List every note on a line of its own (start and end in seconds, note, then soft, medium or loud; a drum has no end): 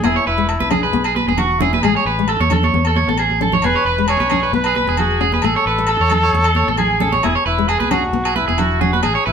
0.04 0.15 E1 medium
0.04 0.17 B3 medium
0.04 0.27 E4 medium
0.04 0.15 G#4 medium
0.04 low agogo medium
0.16 0.26 C#5 medium
0.27 0.58 E1 medium
0.27 0.74 E4 medium
0.27 0.48 B4 medium
0.38 0.51 G#3 medium
0.49 muted clean electric guitar stroke medium
0.49 low agogo medium
0.60 0.92 B1 medium
0.60 0.70 B4 medium
0.60 high conga medium
0.70 0.84 C#4 medium
0.70 0.82 G#4 medium
0.70 1.16 G#4 medium
0.70 low conga medium
0.70 low agogo medium
0.83 1.04 B4 medium
0.93 1.26 B1 medium
0.93 1.07 B3 medium
1.04 1.15 G#4 medium
1.04 low agogo medium
1.16 1.27 B4 medium
1.16 high conga medium
1.28 1.79 E1 medium
1.28 1.42 B3 medium
1.28 1.38 G#4 medium
1.38 1.60 F#4 medium
1.38 1.61 F#4 medium
1.38 low conga medium
1.38 low agogo medium
1.59 1.75 C#4 medium
1.59 1.80 E4 medium
1.59 1.73 G#4 medium
1.59 low conga medium
1.73 1.83 B4 medium
1.73 high conga medium
1.81 1.94 A1 medium
1.81 1.98 G#3 medium
1.81 2.24 G#4 medium
1.81 1.95 G#4 medium
1.81 low agogo medium
1.97 2.06 C#5 medium
2.05 2.37 A1 medium
2.05 2.27 B4 medium
2.19 2.32 G#3 medium
2.28 2.40 A4 medium
2.28 low agogo medium
2.40 2.71 E2 medium
2.40 2.50 C#5 medium
2.40 high conga medium
2.50 2.65 C#4 medium
2.50 2.63 A4 medium
2.50 high conga medium
2.50 low conga medium
2.50 low agogo medium
2.63 2.85 C#5 medium
2.63 high conga medium
2.74 3.05 E2 medium
2.74 2.87 B3 medium
2.85 2.96 A4 medium
2.85 low agogo medium
2.96 3.07 C#5 medium
2.96 high conga medium
3.08 3.59 A1 medium
3.08 3.22 B3 medium
3.08 3.18 A4 medium
3.17 3.40 G#4 medium
3.17 low agogo medium
3.30 high conga medium
3.41 3.54 C#4 medium
3.41 3.53 A4 medium
3.41 low conga medium
3.52 3.63 C#5 medium
3.52 low conga medium
3.62 3.74 E1 medium
3.62 3.77 B3 medium
3.62 3.75 G#4 medium
3.62 4.06 B4 loud
3.62 low agogo medium
3.76 3.85 C#5 medium
3.85 4.17 E1 medium
3.85 4.07 B4 medium
3.98 4.12 G#3 medium
4.08 4.20 G#4 medium
4.08 4.51 C#5 medium
4.08 low agogo medium
4.20 4.51 B1 medium
4.20 4.30 B4 medium
4.20 high conga medium
4.30 4.45 C#4 medium
4.30 4.42 G#4 medium
4.30 low conga medium
4.30 low agogo medium
4.43 4.64 B4 medium
4.53 4.85 B1 medium
4.53 4.67 B3 medium
4.53 4.96 B4 loud
4.64 4.76 G#4 medium
4.64 low agogo medium
4.75 4.87 B4 medium
4.75 high conga medium
4.87 5.39 E1 medium
4.87 5.01 B3 medium
4.87 4.98 G#4 medium
4.97 5.20 F#4 medium
4.97 5.46 G#4 medium
4.97 low conga medium
4.97 low agogo medium
5.21 5.34 C#4 medium
5.21 5.32 G#4 medium
5.32 5.43 B4 medium
5.32 high conga medium
5.42 5.54 A1 medium
5.42 5.57 A3 medium
5.42 5.55 G#4 medium
5.42 6.77 A4 loud
5.42 low agogo medium
5.56 5.66 C#5 medium
5.66 5.98 A1 medium
5.66 5.88 B4 medium
5.78 muted nylon-string guitar stroke medium
5.87 6.00 A4 medium
5.87 low agogo medium
6.00 6.31 E2 medium
6.00 6.11 C#5 medium
6.10 6.25 C#4 medium
6.10 6.22 A4 medium
6.10 low conga medium
6.10 low agogo medium
6.23 6.44 C#5 medium
6.33 6.65 E2 medium
6.33 muted nylon-string guitar stroke medium
6.44 6.55 A4 medium
6.44 low agogo medium
6.55 6.67 C#5 medium
6.55 high conga medium
6.67 7.19 A1 medium
6.67 6.82 B3 medium
6.67 6.78 A4 medium
6.77 7.20 G#4 medium
6.77 7.00 G#4 medium
6.77 low conga medium
6.77 low agogo medium
7.00 7.15 C#4 medium
7.00 7.12 A4 medium
7.00 low conga medium
7.12 7.23 C#5 medium
7.12 high conga medium
7.23 7.35 E1 medium
7.23 7.37 B3 medium
7.23 7.33 E4 medium
7.23 7.35 G#4 medium
7.23 low agogo medium
7.35 7.45 C#5 medium
7.46 7.78 E1 medium
7.46 7.70 E4 medium
7.46 7.67 B4 medium
7.58 7.72 G#3 medium
7.69 7.79 G#4 medium
7.69 7.93 G#4 medium
7.69 low agogo medium
7.80 8.11 B1 medium
7.80 7.90 B4 medium
7.80 high conga medium
7.91 8.05 C#4 medium
7.91 8.38 F#4 medium
7.91 8.03 G#4 medium
7.91 low conga medium
7.91 low agogo medium
8.13 8.45 B1 medium
8.13 8.27 B3 medium
8.25 8.35 G#4 medium
8.25 low agogo medium
8.36 8.82 E4 medium
8.36 8.47 B4 medium
8.36 high conga medium
8.48 9.00 E1 medium
8.48 8.62 B3 medium
8.48 8.58 G#4 medium
8.58 8.80 F#4 medium
8.58 low conga medium
8.58 low agogo medium
8.81 8.95 C#4 medium
8.81 9.03 F#4 medium
8.81 8.92 G#4 medium
8.81 low conga medium
8.93 9.03 B4 medium
8.93 high conga medium
9.03 9.15 A1 medium
9.03 9.15 G#4 medium
9.03 9.25 G#4 medium
9.03 muted nylon-string guitar stroke medium
9.03 low agogo medium
9.15 9.25 C#5 medium
9.26 9.32 A1 medium
9.26 9.32 E4 medium
9.26 9.32 B4 medium